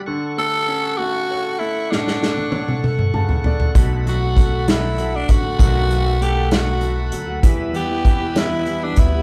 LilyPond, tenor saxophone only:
\new Staff \with { instrumentName = "Tenor saxophone" } { \time 6/8 \key b \minor \tempo 4. = 65 r8 a'4 fis'4 e'8 | d'4. r4. | r8 fis'4 e'8. d'16 fis'8~ | fis'4 g'8 fis'4 r8 |
r8 g'4 e'8. d'16 e'8 | }